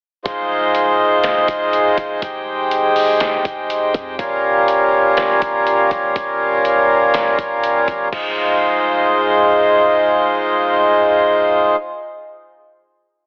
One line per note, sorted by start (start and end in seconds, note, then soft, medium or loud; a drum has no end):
0.25 1.45 F1 loud
0.25 4.15 G#3 medium
0.25 4.15 D#4 medium
0.25 2.20 F4 medium
0.25 4.15 C5 medium
0.25 kick loud
0.25 closed hi-hat medium
0.75 closed hi-hat medium
1.24 snare loud
1.24 closed hi-hat medium
1.48 1.96 F1 loud
1.48 kick medium
1.48 closed hi-hat medium
1.73 closed hi-hat medium
1.98 2.21 F1 loud
1.98 kick loud
1.98 closed hi-hat medium
2.22 3.41 F1 loud
2.22 4.17 G4 medium
2.22 kick loud
2.22 closed hi-hat medium
2.71 closed hi-hat medium
2.96 open hi-hat medium
3.20 snare loud
3.20 closed hi-hat medium
3.45 3.92 F1 loud
3.45 kick medium
3.45 closed hi-hat medium
3.70 closed hi-hat medium
3.94 4.18 F2 loud
3.94 kick loud
3.94 closed hi-hat soft
4.19 5.38 G1 loud
4.19 8.08 G3 medium
4.19 8.08 C#4 medium
4.19 8.08 F4 medium
4.19 8.08 A#4 medium
4.19 kick loud
4.19 closed hi-hat medium
4.68 closed hi-hat medium
5.17 snare loud
5.17 closed hi-hat medium
5.42 5.89 G1 loud
5.42 kick medium
5.42 closed hi-hat medium
5.67 closed hi-hat medium
5.91 6.15 G1 loud
5.91 kick medium
5.91 closed hi-hat medium
6.16 7.35 G1 loud
6.16 kick loud
6.16 closed hi-hat medium
6.65 closed hi-hat medium
7.14 snare loud
7.14 closed hi-hat medium
7.39 7.86 G1 loud
7.39 kick medium
7.39 closed hi-hat medium
7.64 closed hi-hat medium
7.88 8.12 G1 loud
7.88 kick loud
7.88 closed hi-hat medium
8.13 10.05 F1 loud
8.13 11.76 G#3 medium
8.13 11.76 D#4 medium
8.13 11.76 F4 medium
8.13 11.76 C5 medium
8.13 kick loud
8.13 crash medium